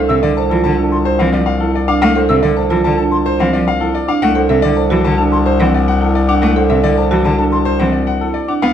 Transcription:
Already playing: bass clarinet C2, grand piano C5
0.09 cello C3, marimba A4, grand piano E5, flute E6
0.23 cello D3, grand piano D5
0.37 marimba C5, grand piano A5
0.50 cello E3, marimba F4, grand piano A4
0.64 cello D3, grand piano A5
0.77 marimba D4, grand piano A4, flute A5
0.92 grand piano A5, flute C6
1.05 grand piano C5, marimba C5
1.19 cello E3, marimba C4, grand piano F5
1.33 cello F3, grand piano D5
1.46 grand piano F5
1.60 marimba E4, grand piano A4
1.75 grand piano D5
1.88 marimba D4, grand piano F5, flute D6
2.02 cello A3, grand piano F5
2.15 marimba A4, grand piano C5
2.29 cello C3, marimba A4, grand piano E5, flute E6
2.43 cello D3, grand piano D5
2.57 marimba C5, grand piano A5
2.70 cello E3, marimba F4, grand piano A4
2.84 cello D3, grand piano A5
2.97 marimba D4, grand piano A4, flute A5
3.11 grand piano A5, flute C6
3.26 grand piano C5, marimba C5
3.39 cello E3, marimba C4, grand piano F5
3.53 cello F3, grand piano D5
3.68 grand piano F5
3.80 marimba E4, grand piano A4
3.95 grand piano D5
4.08 marimba D4, grand piano F5, flute D6
4.22 bass clarinet C2, cello A3, grand piano F#5
4.35 marimba A4, grand piano C5
4.49 cello C3, marimba A4, grand piano E5
4.62 cello D3, grand piano D5
4.76 marimba C5, grand piano A5
4.90 cello E3, marimba F#4, grand piano A4
5.04 cello D3, grand piano A5
5.18 marimba D4, grand piano A4, flute A5
5.32 grand piano A5, flute C6
5.46 marimba C5, grand piano C5
5.60 cello E3, marimba C4, grand piano F#5
5.74 grand piano D5
5.88 grand piano F#5
6.01 marimba E4, grand piano A4
6.15 grand piano D5
6.28 marimba D4, grand piano F#5, flute D6
6.42 cello A3, grand piano F#5
6.56 marimba A4, grand piano C5
6.69 cello C3, marimba A4, grand piano E5
6.83 cello D3, grand piano D5
6.98 marimba C5, grand piano A5
7.11 cello E3, marimba F#4, grand piano A4
7.25 cello D3, grand piano A5
7.39 marimba D4, grand piano A4, flute A5
7.52 grand piano A5, flute C6
7.65 grand piano C5, marimba C5
7.79 cello E3, marimba C4, grand piano F#5
7.92 grand piano D5
8.07 grand piano F#5
8.21 marimba E4, grand piano A4
8.34 grand piano D5
8.48 marimba D4, grand piano F#5, flute D6
8.62 bass clarinet C2, cello B3, grand piano F5

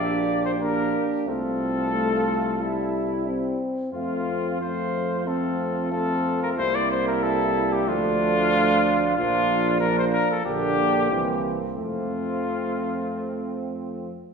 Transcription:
Already playing: bass trombone A#1, euphonium A#3, french horn D4, flugelhorn G4, trumpet D5
0.45 trumpet C5
0.60 euphonium A#3, french horn D4, flugelhorn G4, trumpet A#4
1.26 bass trombone C2, euphonium A3, french horn C4, flugelhorn F4, trumpet A4
1.93 french horn A3
2.60 euphonium G3, french horn E4, flugelhorn E4
3.27 french horn C4
3.93 bass trombone F2, euphonium A3, french horn C4, flugelhorn F4, trumpet F4
4.61 euphonium A3, french horn C4, flugelhorn F4, trumpet C5
5.27 euphonium A3, french horn C4, flugelhorn F4, trumpet A4
5.92 euphonium A3, french horn C4, flugelhorn F4, trumpet A4
6.43 trumpet A#4
6.58 bass trombone C2, euphonium G3, french horn A#3, flugelhorn E4, trumpet C5
6.75 trumpet D5
6.92 trumpet C5
7.08 trumpet A#4
7.23 trumpet A4
7.73 trumpet G4
7.87 bass trombone D2, euphonium F3, french horn A3, flugelhorn D4, trumpet F4
9.16 bass trombone A#1, euphonium F3, french horn A#3, flugelhorn D4, trumpet F4
9.80 euphonium F3, french horn A#3, flugelhorn D4, trumpet A#4
9.98 trumpet C5
10.13 trumpet A#4
10.31 trumpet A4
10.44 bass trombone A#1, euphonium D3, french horn A#3, flugelhorn D4, trumpet G4
11.10 bass trombone C2, euphonium E3, french horn A#3, flugelhorn C4
11.77 bass trombone F2, euphonium F3, french horn A3, flugelhorn C4, trumpet F4

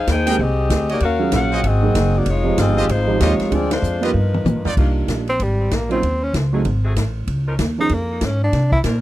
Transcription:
0.07 upright bass D#2, saxophone section D#4 G#4 C5 G5, kick, snare, hi-hat pedal, ride
0.27 grand piano G#3 A#3 C4 D#4 G4, trumpet section G#4 A#4 D#5 G5, ride
0.39 upright bass C2, saxophone section C4 G4 G#4 D#5, kick
0.70 upright bass D2, kick, snare, hi-hat pedal, ride
0.89 saxophone section A#3 D#4 G4 D5, trumpet section F#4 G#4 C#5 D#5, ride
1.00 upright bass D#2, saxophone section C#4 F#4 A#4 F5, kick, ride
1.19 grand piano F#3 A#3 C#4 F4 G#4
1.32 upright bass A#1, saxophone section C#4 A#4 F5 F#5, kick, snare, hi-hat pedal, ride
1.51 trumpet section F#4 G#4 C5 D#5
1.64 upright bass G#1, saxophone section C4 F#4 G#4 D#5, kick, ride
1.82 grand piano F#3 A#3 C4 D#4 G#4
1.95 upright bass F#1, kick, snare, hi-hat pedal, ride
2.17 saxophone section A#3 D#4 F#4 D5
2.26 upright bass F1, saxophone section G#3 D#4 F4 C#5, kick, ride
2.44 grand piano F3 G#3 C4 D#4 G4
2.57 upright bass G1, saxophone section C4 F4 G#4 D#5, kick, snare, hi-hat pedal, ride
2.77 trumpet section F4 G4 C5 D#5
2.89 upright bass G#1, saxophone section G#3 D#4 F4 C5, kick, ride
3.07 grand piano F3 G#3 C4 D#4 G4
3.20 upright bass D#2, saxophone section G#3 D#4 F4 C#5, trumpet section F4 G4 C5 D#5, kick, snare, hi-hat pedal, ride
3.40 muted upright bass stroke, snare, ride
3.50 upright bass D2, grand piano F3 G#3 C4 D4 F4, saxophone section C4 F4 G#4 D5, kick, ride
3.71 saxophone section G#3 D4 F4 C5, snare, ride
3.82 upright bass F2, hi-hat pedal
4.01 grand piano G3 A#3 B3 D#4 F4, trumpet section F4 G4 B4 D#5, saxophone section A#4, ride
4.05 saxophone section F3 D#4 B4
4.14 upright bass G2
4.34 high tom
4.45 upright bass A#2, hi-hat pedal, high tom
4.56 upright bass G2
4.65 upright bass F2, trumpet section D#4 F4 A#4 D5, floor tom
4.77 upright bass C2, saxophone section D#3 A#3 D4 F4, grand piano G3 A#3 D4 D#4 F4, kick, crash
5.08 upright bass A#1, kick, snare, hi-hat pedal, ride
5.27 tenor saxophone C4, ride
5.39 upright bass G#1, tenor saxophone G3, kick, ride
5.71 upright bass A#1, tenor saxophone A#3, kick, snare, hi-hat pedal, ride
5.89 saxophone section D#3 F#3 C#4 F4, grand piano F#3 A#3 C#4 D#4 F4, tenor saxophone C4, ride
6.02 upright bass D#2, kick, ride
6.23 tenor saxophone C#4
6.34 upright bass C#2, kick, snare, hi-hat pedal, ride
6.53 saxophone section F#3 A3 C4 G#4, grand piano F#3 A3 C4 D#4 G#4
6.65 upright bass G#1, kick, ride
6.84 saxophone section F#3 A3 C4 G#4
6.96 upright bass A1, kick, snare, hi-hat pedal, ride
7.27 upright bass C#2, kick, ride
7.47 saxophone section F3 C#4 D#4 A#4
7.59 upright bass D#2, kick, snare, hi-hat pedal, ride
7.78 grand piano F3 A#3 C#4 D#4 G#4, tenor saxophone D#4
7.89 upright bass F2, kick, ride
7.94 tenor saxophone A#3
8.21 upright bass G#2, kick, snare, hi-hat pedal, ride
8.25 tenor saxophone C#4
8.44 tenor saxophone D4
8.53 upright bass C3, kick, snare, ride
8.72 tenor saxophone E4, kick
8.84 upright bass A#2, saxophone section E3 C4 D4 A#4, kick, snare, hi-hat pedal, ride

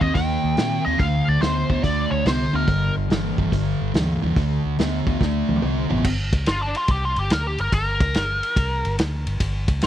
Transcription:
0.01 fingered electric bass D#2, distorted electric guitar D#3 C4, lead electric guitar D#5, kick
0.14 fingered electric bass D#2, distorted electric guitar D#3 A#3, lead electric guitar G5, kick, open hi-hat
0.44 fingered electric bass D#2
0.57 fingered electric bass A#2, distorted electric guitar D#3 C4, snare, open hi-hat
0.85 fingered electric bass D#2, distorted electric guitar D#3 C4, lead electric guitar D#5
0.99 fingered electric bass D2, distorted electric guitar D3 A3, lead electric guitar F5, kick, open hi-hat
1.28 fingered electric bass D2, lead electric guitar D5
1.41 fingered electric bass D2, distorted electric guitar D3 B3, lead electric guitar C5, snare, open hi-hat
1.69 fingered electric bass D2, distorted electric guitar D3 B3, kick
1.83 fingered electric bass D2, distorted electric guitar D3 A3, lead electric guitar D5, kick, open hi-hat
2.11 fingered electric bass D2, lead electric guitar C#5
2.25 fingered electric bass C2, distorted electric guitar D3 B3, lead electric guitar C5, snare, open hi-hat
2.53 fingered electric bass D2, distorted electric guitar D3 B3, lead electric guitar A#4
2.68 fingered electric bass G1, distorted electric guitar G2 D3, kick, open hi-hat
2.96 fingered electric bass G1
3.10 fingered electric bass G1, distorted electric guitar G2 E3, snare, open hi-hat
3.38 fingered electric bass G1, distorted electric guitar G2 E3, kick
3.52 fingered electric bass G1, distorted electric guitar G2 D3, kick, open hi-hat
3.81 fingered electric bass G1
3.94 fingered electric bass D2, distorted electric guitar G2 E3, snare, open hi-hat
4.23 fingered electric bass D#2, distorted electric guitar G2 E3
4.36 fingered electric bass D2, distorted electric guitar D3 A3, kick, open hi-hat
4.65 fingered electric bass D2
4.79 fingered electric bass D2, distorted electric guitar D3 B3, snare, open hi-hat
5.07 fingered electric bass D2, distorted electric guitar D3 B3, kick
5.21 fingered electric bass D2, distorted electric guitar D3 A3, kick, snare
5.49 fingered electric bass D2, high tom
5.56 high tom
5.62 fingered electric bass C2, distorted electric guitar D3 B3, mid tom
5.90 fingered electric bass A1, distorted electric guitar D3 B3, floor tom
5.98 floor tom
6.04 fingered electric bass G1, kick, crash
6.33 fingered electric bass C#2, kick, ride
6.46 fingered electric bass G1, lead electric guitar F4, snare, ride
6.62 lead electric guitar D4
6.75 lead electric guitar F4, ride
6.88 fingered electric bass C2, lead electric guitar G4, kick, ride
7.05 lead electric guitar F4
7.16 fingered electric bass G1, lead electric guitar G4, ride
7.30 fingered electric bass D2, lead electric guitar A#4, snare, ride
7.47 lead electric guitar G4
7.58 fingered electric bass G1, lead electric guitar A#4, ride
7.72 fingered electric bass G1, lead electric guitar A#4, kick, ride
8.00 fingered electric bass C#2, kick, ride
8.14 fingered electric bass G1, snare, ride
8.43 ride
8.56 fingered electric bass C2, kick, ride
8.85 fingered electric bass G1, ride
8.99 fingered electric bass D2, snare, ride
9.26 fingered electric bass G1, ride
9.40 fingered electric bass G1, kick, ride
9.68 fingered electric bass C#2, kick, ride
9.82 fingered electric bass G1, lead electric guitar F4, snare, ride

